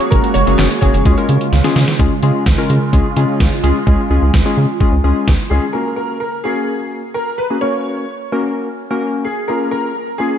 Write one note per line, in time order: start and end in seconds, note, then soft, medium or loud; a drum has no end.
0.00 1.97 G#3 medium
0.00 0.35 A#3 medium
0.00 1.03 A#3 medium
0.00 0.35 C#4 medium
0.00 0.35 F#4 medium
0.00 1.04 F#4 medium
0.00 0.35 G#4 medium
0.00 0.12 C#5 loud
0.00 closed hi-hat soft
0.11 0.21 F#1 loud
0.11 0.35 A#4 medium
0.11 kick loud
0.11 closed hi-hat medium
0.24 closed hi-hat medium
0.34 0.44 F#1 loud
0.34 0.79 C#5 loud
0.34 closed hi-hat medium
0.47 0.56 F#1 loud
0.47 0.69 A#3 medium
0.47 0.69 C#4 medium
0.47 0.69 F#4 medium
0.47 0.69 G#4 medium
0.47 closed hi-hat medium
0.58 0.67 F#1 loud
0.58 snare loud
0.58 clap loud
0.58 closed hi-hat medium
0.71 closed hi-hat medium
0.81 0.91 F#1 loud
0.81 1.04 A#3 medium
0.81 1.04 C#4 medium
0.81 1.04 F#4 medium
0.81 1.04 G#4 medium
0.81 1.71 C#5 medium
0.81 kick medium
0.81 closed hi-hat medium
0.94 1.03 F#1 loud
0.94 closed hi-hat medium
1.05 1.14 C#2 loud
1.05 1.98 C#3 medium
1.05 1.15 G#3 medium
1.05 1.15 C#4 medium
1.05 1.99 F4 medium
1.05 1.15 F4 medium
1.05 1.15 G#4 medium
1.05 kick loud
1.05 closed hi-hat medium
1.18 1.46 G#3 medium
1.18 1.46 C#4 medium
1.18 1.46 F4 medium
1.18 1.46 A#4 medium
1.18 closed hi-hat soft
1.29 1.38 C#3 loud
1.29 closed hi-hat medium
1.41 closed hi-hat medium
1.52 1.61 C#2 loud
1.52 snare medium
1.52 closed hi-hat medium
1.64 1.86 G#3 medium
1.64 1.86 C#4 medium
1.64 1.86 F4 medium
1.64 1.86 G#4 loud
1.64 snare medium
1.64 closed hi-hat medium
1.76 1.85 C#3 loud
1.76 snare medium
1.76 open hi-hat medium
1.88 snare medium
1.88 closed hi-hat soft
1.99 2.08 C#2 loud
1.99 5.71 C#3 medium
1.99 5.71 G#3 medium
1.99 2.14 G#3 medium
1.99 2.14 C#4 medium
1.99 2.14 F4 medium
1.99 5.71 F4 medium
1.99 2.14 G#4 loud
1.99 kick loud
1.99 closed hi-hat medium
2.23 2.31 C#3 loud
2.23 2.44 G#3 medium
2.23 2.44 C#4 medium
2.23 2.44 F4 medium
2.23 2.44 G#4 medium
2.23 closed hi-hat medium
2.46 2.55 C#2 loud
2.46 kick loud
2.46 snare loud
2.46 closed hi-hat medium
2.58 2.80 G#3 medium
2.58 2.80 C#4 medium
2.58 2.80 F4 medium
2.58 2.80 A#4 loud
2.70 2.78 C#3 loud
2.70 closed hi-hat medium
2.93 3.02 C#2 loud
2.93 3.07 G#3 medium
2.93 3.07 C#4 medium
2.93 3.07 F4 medium
2.93 3.07 G#4 loud
2.93 kick loud
2.93 closed hi-hat medium
3.17 3.25 C#3 loud
3.17 3.45 G#3 medium
3.17 3.45 C#4 medium
3.17 3.45 F4 medium
3.17 3.45 G#4 loud
3.17 closed hi-hat medium
3.40 3.49 C#2 loud
3.40 kick loud
3.40 snare loud
3.40 closed hi-hat medium
3.64 3.72 C#2 loud
3.64 3.78 G#3 medium
3.64 3.78 C#4 medium
3.64 3.78 F4 medium
3.64 3.78 G#4 loud
3.64 closed hi-hat medium
3.87 3.96 C#2 loud
3.87 4.01 G#3 medium
3.87 4.01 C#4 medium
3.87 4.01 F4 medium
3.87 4.01 G#4 medium
3.87 kick loud
4.10 4.19 C#2 medium
4.10 4.32 G#3 medium
4.10 4.32 C#4 medium
4.10 4.32 F4 medium
4.10 4.32 G#4 loud
4.22 4.31 C#2 loud
4.34 4.42 C#2 loud
4.34 kick loud
4.34 snare loud
4.46 4.67 G#3 medium
4.46 4.67 C#4 medium
4.46 4.67 F4 medium
4.46 4.67 G#4 loud
4.57 4.66 C#3 loud
4.80 4.95 G#3 medium
4.80 4.95 C#4 medium
4.80 4.95 F4 medium
4.80 4.95 G#4 loud
4.80 kick loud
4.92 5.01 C#2 medium
5.04 5.13 C#2 medium
5.04 5.33 G#3 medium
5.04 5.33 C#4 medium
5.04 5.33 F4 medium
5.04 5.33 G#4 medium
5.28 5.36 C#2 loud
5.28 kick loud
5.28 snare loud
5.50 5.60 C#2 medium
5.50 5.65 G#3 medium
5.50 5.65 C#4 medium
5.50 5.65 F4 medium
5.50 5.72 G#4 medium
5.50 5.65 G#4 loud
5.73 6.18 A#3 medium
5.73 6.18 C#4 medium
5.73 6.18 F#4 medium
5.73 5.95 A#4 medium
5.73 6.17 A#4 medium
5.96 6.19 A#4 medium
6.20 6.45 A#4 medium
6.44 7.02 A#3 medium
6.44 7.02 C#4 medium
6.44 7.02 F#4 medium
6.44 7.11 G#4 medium
6.44 7.02 A#4 medium
7.14 7.39 A#4 medium
7.38 7.60 B4 medium
7.50 7.57 A#3 medium
7.50 7.58 C#4 medium
7.50 7.57 F#4 medium
7.50 7.57 G#4 medium
7.61 8.05 A#3 medium
7.61 8.05 C#4 medium
7.61 8.05 F#4 medium
7.61 8.05 A#4 medium
7.61 8.28 C#5 medium
8.32 8.68 A#3 medium
8.32 8.68 C#4 medium
8.32 8.68 F#4 medium
8.32 8.68 A#4 medium
8.91 9.27 A#3 medium
8.91 9.27 C#4 medium
8.91 9.27 F#4 medium
8.91 9.27 A#4 medium
9.25 9.49 G#4 medium
9.48 9.93 A#3 medium
9.48 9.92 C#4 medium
9.48 9.93 F4 medium
9.48 9.92 G#4 medium
9.48 9.70 A#4 medium
9.71 10.16 A#4 medium
10.18 10.38 A#3 medium
10.18 10.38 C#4 medium
10.18 10.38 F4 medium
10.18 10.38 G#4 medium